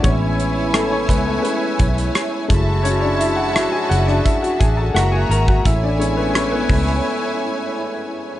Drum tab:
HH |x-x-x-x-x-xxx-x-|x-x-x-x-xxx-x-x-|x-x-x-o---------|
SD |----r-------r---|----r--r--r-r---|----r--r--------|
BD |o-----o---o---o-|--------o-o----o|o-----o---------|